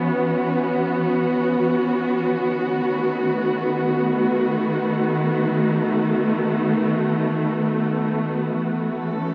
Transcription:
0, 0, Header, 1, 2, 480
1, 0, Start_track
1, 0, Tempo, 500000
1, 8970, End_track
2, 0, Start_track
2, 0, Title_t, "String section"
2, 0, Program_c, 0, 48
2, 0, Note_on_c, 0, 52, 68
2, 0, Note_on_c, 0, 59, 70
2, 0, Note_on_c, 0, 61, 58
2, 0, Note_on_c, 0, 66, 66
2, 2365, Note_off_c, 0, 52, 0
2, 2367, Note_on_c, 0, 51, 76
2, 2688, Note_on_c, 0, 57, 66
2, 3963, Note_off_c, 0, 61, 0
2, 8223, Note_off_c, 0, 51, 0
2, 8237, Note_on_c, 0, 52, 50
2, 8549, Note_on_c, 0, 69, 59
2, 8695, Note_on_c, 0, 61, 62
2, 8970, Note_off_c, 0, 52, 0
2, 8970, Note_off_c, 0, 57, 0
2, 8970, Note_off_c, 0, 59, 0
2, 8970, Note_off_c, 0, 61, 0
2, 8970, Note_off_c, 0, 66, 0
2, 8970, Note_off_c, 0, 69, 0
2, 8970, End_track
0, 0, End_of_file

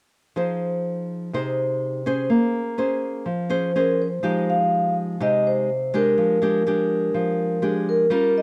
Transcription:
0, 0, Header, 1, 3, 480
1, 0, Start_track
1, 0, Key_signature, -4, "minor"
1, 0, Tempo, 483481
1, 364, Time_signature, 4, 2, 24, 8
1, 8360, End_track
2, 0, Start_track
2, 0, Title_t, "Vibraphone"
2, 0, Program_c, 0, 11
2, 3742, Note_on_c, 0, 70, 66
2, 3981, Note_off_c, 0, 70, 0
2, 3988, Note_on_c, 0, 72, 77
2, 4465, Note_on_c, 0, 77, 86
2, 4471, Note_off_c, 0, 72, 0
2, 4903, Note_off_c, 0, 77, 0
2, 5186, Note_on_c, 0, 75, 98
2, 5422, Note_off_c, 0, 75, 0
2, 5431, Note_on_c, 0, 72, 88
2, 5912, Note_off_c, 0, 72, 0
2, 5912, Note_on_c, 0, 70, 92
2, 7590, Note_on_c, 0, 68, 72
2, 7627, Note_off_c, 0, 70, 0
2, 7824, Note_off_c, 0, 68, 0
2, 7833, Note_on_c, 0, 70, 81
2, 8266, Note_off_c, 0, 70, 0
2, 8315, Note_on_c, 0, 75, 79
2, 8360, Note_off_c, 0, 75, 0
2, 8360, End_track
3, 0, Start_track
3, 0, Title_t, "Nylon-string guitar"
3, 0, Program_c, 1, 24
3, 357, Note_on_c, 1, 63, 46
3, 358, Note_on_c, 1, 53, 58
3, 363, Note_on_c, 1, 68, 49
3, 370, Note_on_c, 1, 72, 54
3, 1283, Note_off_c, 1, 63, 0
3, 1287, Note_off_c, 1, 68, 0
3, 1288, Note_off_c, 1, 72, 0
3, 1299, Note_off_c, 1, 53, 0
3, 1324, Note_on_c, 1, 48, 59
3, 1331, Note_on_c, 1, 63, 47
3, 1334, Note_on_c, 1, 68, 49
3, 1335, Note_on_c, 1, 72, 55
3, 2009, Note_off_c, 1, 68, 0
3, 2010, Note_off_c, 1, 63, 0
3, 2013, Note_off_c, 1, 72, 0
3, 2045, Note_on_c, 1, 61, 56
3, 2053, Note_on_c, 1, 72, 64
3, 2054, Note_on_c, 1, 68, 57
3, 2263, Note_off_c, 1, 48, 0
3, 2280, Note_on_c, 1, 58, 63
3, 2728, Note_off_c, 1, 61, 0
3, 2731, Note_off_c, 1, 72, 0
3, 2732, Note_off_c, 1, 68, 0
3, 2757, Note_on_c, 1, 61, 53
3, 2762, Note_on_c, 1, 68, 54
3, 2767, Note_on_c, 1, 72, 55
3, 3220, Note_off_c, 1, 58, 0
3, 3232, Note_on_c, 1, 53, 60
3, 3239, Note_off_c, 1, 61, 0
3, 3242, Note_off_c, 1, 68, 0
3, 3243, Note_off_c, 1, 72, 0
3, 3470, Note_on_c, 1, 61, 52
3, 3474, Note_on_c, 1, 68, 53
3, 3478, Note_on_c, 1, 72, 59
3, 3680, Note_off_c, 1, 68, 0
3, 3681, Note_off_c, 1, 61, 0
3, 3684, Note_off_c, 1, 72, 0
3, 3729, Note_on_c, 1, 61, 47
3, 3730, Note_on_c, 1, 68, 48
3, 3734, Note_on_c, 1, 72, 53
3, 4037, Note_off_c, 1, 61, 0
3, 4037, Note_off_c, 1, 68, 0
3, 4039, Note_off_c, 1, 72, 0
3, 4175, Note_off_c, 1, 53, 0
3, 4197, Note_on_c, 1, 53, 65
3, 4202, Note_on_c, 1, 56, 49
3, 4202, Note_on_c, 1, 63, 53
3, 4207, Note_on_c, 1, 67, 58
3, 5124, Note_off_c, 1, 56, 0
3, 5125, Note_off_c, 1, 63, 0
3, 5128, Note_off_c, 1, 67, 0
3, 5137, Note_off_c, 1, 53, 0
3, 5166, Note_on_c, 1, 48, 61
3, 5167, Note_on_c, 1, 56, 52
3, 5172, Note_on_c, 1, 63, 53
3, 5177, Note_on_c, 1, 67, 56
3, 5643, Note_off_c, 1, 56, 0
3, 5646, Note_off_c, 1, 63, 0
3, 5648, Note_off_c, 1, 67, 0
3, 5894, Note_on_c, 1, 56, 61
3, 5899, Note_on_c, 1, 62, 55
3, 5905, Note_on_c, 1, 67, 60
3, 6101, Note_off_c, 1, 48, 0
3, 6132, Note_on_c, 1, 53, 61
3, 6331, Note_off_c, 1, 56, 0
3, 6333, Note_off_c, 1, 62, 0
3, 6336, Note_off_c, 1, 67, 0
3, 6370, Note_on_c, 1, 56, 54
3, 6379, Note_on_c, 1, 62, 55
3, 6382, Note_on_c, 1, 67, 67
3, 6569, Note_off_c, 1, 56, 0
3, 6574, Note_off_c, 1, 62, 0
3, 6574, Note_off_c, 1, 67, 0
3, 6617, Note_on_c, 1, 56, 60
3, 6621, Note_on_c, 1, 62, 53
3, 6626, Note_on_c, 1, 67, 58
3, 7064, Note_off_c, 1, 53, 0
3, 7091, Note_on_c, 1, 53, 63
3, 7532, Note_off_c, 1, 56, 0
3, 7534, Note_off_c, 1, 62, 0
3, 7535, Note_off_c, 1, 67, 0
3, 7566, Note_on_c, 1, 56, 50
3, 7571, Note_on_c, 1, 67, 58
3, 7573, Note_on_c, 1, 62, 48
3, 8007, Note_off_c, 1, 56, 0
3, 8008, Note_off_c, 1, 62, 0
3, 8009, Note_off_c, 1, 67, 0
3, 8024, Note_off_c, 1, 53, 0
3, 8043, Note_on_c, 1, 55, 64
3, 8047, Note_on_c, 1, 61, 54
3, 8050, Note_on_c, 1, 65, 56
3, 8054, Note_on_c, 1, 70, 54
3, 8360, Note_off_c, 1, 55, 0
3, 8360, Note_off_c, 1, 61, 0
3, 8360, Note_off_c, 1, 65, 0
3, 8360, Note_off_c, 1, 70, 0
3, 8360, End_track
0, 0, End_of_file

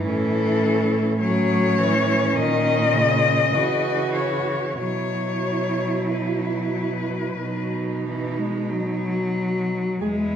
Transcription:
0, 0, Header, 1, 5, 480
1, 0, Start_track
1, 0, Tempo, 1158301
1, 25, Time_signature, 4, 2, 24, 8
1, 1465, Tempo, 1263158
1, 1945, Tempo, 1301518
1, 3996, End_track
2, 0, Start_track
2, 0, Title_t, "Cello"
2, 0, Program_c, 0, 42
2, 17, Note_on_c, 0, 69, 117
2, 484, Note_off_c, 0, 69, 0
2, 498, Note_on_c, 0, 73, 127
2, 976, Note_on_c, 0, 75, 127
2, 983, Note_off_c, 0, 73, 0
2, 1693, Note_off_c, 0, 75, 0
2, 1696, Note_on_c, 0, 73, 100
2, 1937, Note_off_c, 0, 73, 0
2, 1940, Note_on_c, 0, 73, 105
2, 2429, Note_on_c, 0, 71, 76
2, 2434, Note_off_c, 0, 73, 0
2, 3384, Note_off_c, 0, 71, 0
2, 3861, Note_on_c, 0, 71, 85
2, 3996, Note_off_c, 0, 71, 0
2, 3996, End_track
3, 0, Start_track
3, 0, Title_t, "Cello"
3, 0, Program_c, 1, 42
3, 24, Note_on_c, 1, 61, 80
3, 494, Note_off_c, 1, 61, 0
3, 506, Note_on_c, 1, 61, 91
3, 1470, Note_on_c, 1, 66, 78
3, 1476, Note_off_c, 1, 61, 0
3, 1948, Note_on_c, 1, 64, 68
3, 1953, Note_off_c, 1, 66, 0
3, 2905, Note_on_c, 1, 63, 68
3, 2910, Note_off_c, 1, 64, 0
3, 3782, Note_off_c, 1, 63, 0
3, 3867, Note_on_c, 1, 68, 65
3, 3897, Note_off_c, 1, 68, 0
3, 3996, End_track
4, 0, Start_track
4, 0, Title_t, "Cello"
4, 0, Program_c, 2, 42
4, 0, Note_on_c, 2, 52, 79
4, 494, Note_off_c, 2, 52, 0
4, 497, Note_on_c, 2, 54, 91
4, 737, Note_on_c, 2, 52, 87
4, 743, Note_off_c, 2, 54, 0
4, 978, Note_on_c, 2, 51, 91
4, 984, Note_off_c, 2, 52, 0
4, 1213, Note_on_c, 2, 49, 83
4, 1219, Note_off_c, 2, 51, 0
4, 1456, Note_off_c, 2, 49, 0
4, 1459, Note_on_c, 2, 52, 73
4, 1946, Note_on_c, 2, 54, 63
4, 1951, Note_off_c, 2, 52, 0
4, 2906, Note_off_c, 2, 54, 0
4, 2908, Note_on_c, 2, 54, 56
4, 3144, Note_off_c, 2, 54, 0
4, 3149, Note_on_c, 2, 52, 67
4, 3266, Note_on_c, 2, 56, 68
4, 3272, Note_off_c, 2, 52, 0
4, 3383, Note_on_c, 2, 54, 78
4, 3389, Note_off_c, 2, 56, 0
4, 3864, Note_on_c, 2, 56, 89
4, 3870, Note_off_c, 2, 54, 0
4, 3996, Note_off_c, 2, 56, 0
4, 3996, End_track
5, 0, Start_track
5, 0, Title_t, "Cello"
5, 0, Program_c, 3, 42
5, 24, Note_on_c, 3, 45, 86
5, 964, Note_off_c, 3, 45, 0
5, 979, Note_on_c, 3, 46, 89
5, 1464, Note_on_c, 3, 49, 73
5, 1470, Note_off_c, 3, 46, 0
5, 1942, Note_off_c, 3, 49, 0
5, 1944, Note_on_c, 3, 47, 69
5, 2893, Note_off_c, 3, 47, 0
5, 2905, Note_on_c, 3, 47, 66
5, 3767, Note_off_c, 3, 47, 0
5, 3865, Note_on_c, 3, 40, 70
5, 3996, Note_off_c, 3, 40, 0
5, 3996, End_track
0, 0, End_of_file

